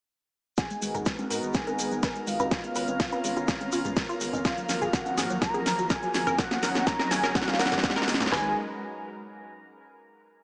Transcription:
0.57 analog synth pad G#3 B3 D#4 F#4 A#4, synth arpeggio sound F#4, synth texture A#4 A#5, analog synth lead G#5, kick, snare, closed hi-hat, riser, shekere
0.70 synth arpeggio sound G#3, closed hi-hat, shekere
0.82 sub bass G#1, synth arpeggio sound G#3, open hi-hat, shekere
0.95 sub bass G#1, synth arpeggio sound A#4, closed hi-hat, mid tom, shekere
1.06 synth arpeggio sound G#3, kick, snare, closed hi-hat, shekere
1.19 synth arpeggio sound G#3, closed hi-hat, high conga, shekere
1.30 sub bass G#2, synth arpeggio sound A#4, open hi-hat, shekere
1.43 sub bass G#1, synth arpeggio sound G#3, closed hi-hat, shekere
1.54 synth arpeggio sound G#3, analog synth lead G#5, kick, snare, closed hi-hat, shekere
1.67 sub bass G#1, synth arpeggio sound A#4, closed hi-hat, high conga, shekere
1.79 sub bass G#1, synth arpeggio sound G#3, open hi-hat, shekere
1.91 sub bass G#1, synth arpeggio sound G#3, closed hi-hat, shekere
2.03 synth arpeggio sound B4, kick, snare, closed hi-hat, shekere
2.16 synth arpeggio sound G#3, closed hi-hat, shekere
2.27 sub bass G#1, synth arpeggio sound G#3, analog synth lead F5, open hi-hat, shekere
2.40 sub bass G#1, synth arpeggio sound B4, closed hi-hat, mid tom, high conga, shekere
2.51 synth arpeggio sound G#3, analog synth pad B3 C#4 F4, kick, snare, closed hi-hat, shekere
2.64 synth arpeggio sound G#3, closed hi-hat, shekere
2.75 sub bass G#1, synth arpeggio sound B4, open hi-hat, shekere
2.88 sub bass G#1, synth arpeggio sound G#3, closed hi-hat, high conga, shekere
3.00 synth arpeggio sound G#3, kick, snare, closed hi-hat, shekere
3.12 synth arpeggio sound B4, closed hi-hat, high conga, shekere
3.24 sub bass G#1, synth arpeggio sound G#3, open hi-hat, shekere
3.37 sub bass G#1, synth arpeggio sound F4, closed hi-hat, shekere
3.48 synth arpeggio sound G#3, kick, snare, closed hi-hat, shekere
3.61 sub bass G#1, synth arpeggio sound G#3, closed hi-hat, high conga, shekere
3.72 sub bass G#1, synth arpeggio sound F4, open hi-hat, shekere
3.85 sub bass G#1, synth arpeggio sound G#3, closed hi-hat, mid tom, shekere
3.97 synth arpeggio sound G#3, kick, snare, closed hi-hat, shekere
4.09 synth arpeggio sound F4, closed hi-hat, shekere
4.21 sub bass G#1, synth arpeggio sound G#3, open hi-hat, shekere
4.33 sub bass G#1, synth arpeggio sound G#3, closed hi-hat, mid tom, high conga, shekere
4.45 analog synth pad F3 F#3 A#3, synth arpeggio sound F4, analog synth lead F5, kick, snare, closed hi-hat, shekere
4.58 synth arpeggio sound F#3, closed hi-hat, shekere
4.69 sub bass G#1, synth arpeggio sound F#3, snare, open hi-hat, shekere
4.82 sub bass G#1, synth arpeggio sound G#4, closed hi-hat, mid tom, shekere
4.93 synth arpeggio sound F#3, analog synth lead F#5, kick, snare, closed hi-hat, shekere
5.06 synth arpeggio sound F#3, closed hi-hat, high conga, shekere
5.18 sub bass G#2, synth arpeggio sound G#4, snare, open hi-hat, shekere
5.30 sub bass G#1, synth arpeggio sound F#3, closed hi-hat, shekere
5.42 synth arpeggio sound F#3, analog synth lead A#5, kick, snare, closed hi-hat, shekere
5.54 sub bass G#1, synth arpeggio sound G#4, closed hi-hat, high conga, shekere
5.66 sub bass G#1, synth arpeggio sound F#3, snare, open hi-hat, shekere
5.79 sub bass G#1, synth arpeggio sound F#3, closed hi-hat, shekere
5.90 synth arpeggio sound A#4, analog synth lead G#5, kick, snare, closed hi-hat, shekere
6.03 synth arpeggio sound F#3, closed hi-hat, shekere
6.14 sub bass G#1, synth arpeggio sound F#3, snare, open hi-hat, shekere
6.27 sub bass G#1, synth arpeggio sound A#4, closed hi-hat, mid tom, high conga, shekere
6.38 analog synth pad F#3 C#4 D#4, synth arpeggio sound A#3, analog synth lead F#5, kick, snare, closed hi-hat, shekere
6.51 synth arpeggio sound A#3, snare, closed hi-hat, shekere
6.63 sub bass G#1, synth arpeggio sound A#4, snare, open hi-hat, shekere
6.75 sub bass G#1, synth arpeggio sound A#3, snare, closed hi-hat, high conga, shekere
6.86 synth arpeggio sound A#3, analog synth lead A#5, kick, snare, closed hi-hat, shekere
6.99 synth arpeggio sound A#4, snare, closed hi-hat, high conga, shekere
7.11 sub bass G#1, synth arpeggio sound A#3, analog synth lead G#5, snare, open hi-hat, shekere
7.23 sub bass F#1, synth arpeggio sound A#4, snare, shekere
7.35 synth arpeggio sound A#3, analog synth lead F#5, kick, snare, closed hi-hat, shekere
7.42 snare
7.48 sub bass G#1, synth arpeggio sound A#3, analog synth lead F5, snare, closed hi-hat, high conga, shekere
7.54 snare
7.59 sub bass G#1, synth arpeggio sound A#4, analog synth lead F#5, snare, open hi-hat, shekere
7.66 snare
7.72 sub bass G#1, synth arpeggio sound A#3, snare, closed hi-hat, mid tom, shekere
7.78 snare
7.83 synth arpeggio sound A#3, kick, snare, closed hi-hat, shekere
7.90 snare
7.96 synth arpeggio sound A#4, snare, closed hi-hat, shekere
8.02 snare
8.08 sub bass F#1, synth arpeggio sound A#3, snare, open hi-hat, shekere
8.14 snare
8.20 sub bass A#1, synth arpeggio sound A#3, snare, closed hi-hat, mid tom, high conga, shekere
8.26 snare
8.32 sub bass G#1, analog synth pad G#3 D#4 F#4 A#4 B4, synth arpeggio sound B4, analog synth lead G#5, snare, clap, floor tom

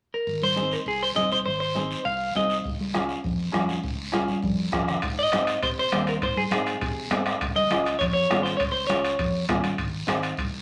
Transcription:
0.14 clean electric guitar A#4
0.27 fingered electric bass G#1, high conga, long guiro
0.42 clean electric guitar C5, high conga
0.56 upright piano C4 D#4 G#4, high conga, short guiro
0.71 clean electric guitar A#4, short guiro
0.86 fingered electric bass C2, clean electric guitar G#4, high conga, long guiro
1.03 clean electric guitar C5
1.15 fingered electric bass C2, upright piano C4 D#4 G#4, clean electric guitar D#5, high conga, short guiro
1.30 clean electric guitar C5, high conga, short guiro
1.45 fingered electric bass G#1, clean electric guitar C5, high conga, long guiro
1.60 clean electric guitar C5
1.75 upright piano C4 D#4 G#4, high conga, short guiro
1.91 short guiro
2.05 fingered electric bass C2, clean electric guitar F5, high conga, long guiro
2.35 fingered electric bass C2, upright piano C4 D#4 G#4, clean electric guitar D#5, high conga, short guiro
2.50 short guiro
2.64 fingered electric bass C#2, bombo low, high conga, long guiro
2.80 high conga
2.94 upright piano C#4 F4 G#4, bombo rim, high conga, short guiro
3.09 short guiro
3.24 fingered electric bass F2, bombo low, high conga, long guiro
3.52 fingered electric bass F2, upright piano C#4 F4 G#4, bombo rim, high conga, short guiro
3.69 high conga, short guiro
3.83 fingered electric bass C#2, bombo low, high conga, long guiro
4.12 upright piano C#4 F4 G#4, bombo rim, high conga, short guiro
4.28 high conga, short guiro
4.43 fingered electric bass F2, bombo low, high conga, long guiro
4.72 fingered electric bass F2, upright piano C#4 F4 G#4, bombo low, bombo rim, short guiro
4.88 bombo rim, low conga, short guiro
5.02 fingered electric bass G#2, bombo low, high conga, high timbale, long guiro
5.19 clean electric guitar D#5
5.32 fingered electric bass G#2, upright piano C4 D#4 G#4, bombo rim, high conga, high timbale, short guiro
5.47 high timbale, short guiro
5.63 fingered electric bass C3, clean electric guitar C5, bombo low, high conga, high timbale, long guiro
5.79 clean electric guitar C5
5.92 fingered electric bass D#2, upright piano C4 D#4 G#4, bombo rim, high conga, high timbale, short guiro
6.07 clean electric guitar A#4, high timbale, short guiro
6.22 fingered electric bass G#2, clean electric guitar C5, bombo low, high conga, high timbale, long guiro
6.37 clean electric guitar G#4, high conga
6.51 fingered electric bass G#2, upright piano C4 D#4 G#4, clean electric guitar G#4, bombo rim, high conga, high timbale, short guiro
6.66 high timbale, short guiro
6.81 fingered electric bass C3, bombo low, high conga, high timbale, long guiro
7.11 fingered electric bass G#2, upright piano C4 D#4 G#4, bombo rim, high conga, high timbale, low timbale, short guiro
7.26 bombo rim, high timbale, short guiro
7.41 fingered electric bass C#2, bombo low, high conga, high timbale, long guiro
7.56 clean electric guitar D#5, high conga
7.70 fingered electric bass C#2, upright piano C#4 F4 G#4, bombo rim, high conga, high timbale, short guiro
7.85 high timbale, short guiro
7.99 fingered electric bass F2, clean electric guitar C#5, bombo low, high conga, high timbale, long guiro
8.13 clean electric guitar C#5
8.30 fingered electric bass G#1, upright piano C#4 F4 G#4, bombo rim, high conga, high timbale, low timbale, short guiro
8.43 clean electric guitar C5, high timbale, short guiro
8.57 fingered electric bass C#2, clean electric guitar C#5, bombo low, high timbale, long guiro
8.61 high conga
8.72 clean electric guitar C5
8.87 fingered electric bass C#2, upright piano C#4 F4 G#4, clean electric guitar C#5, bombo rim, high conga, high timbale, short guiro
9.04 high timbale, short guiro
9.19 fingered electric bass F2, bombo low, high conga, high timbale, long guiro
9.49 fingered electric bass G#1, upright piano C#4 F4 G#4, bombo low, bombo rim, high conga, high timbale, low timbale, short guiro
9.64 high conga, high timbale, short guiro
9.78 fingered electric bass G#1, bombo low, high conga, high timbale, long guiro
10.07 fingered electric bass G#1, upright piano C4 D#4 G#4, bombo rim, high conga, high timbale, short guiro
10.23 high timbale, short guiro
10.37 fingered electric bass C2, bombo low, high conga, high timbale, long guiro

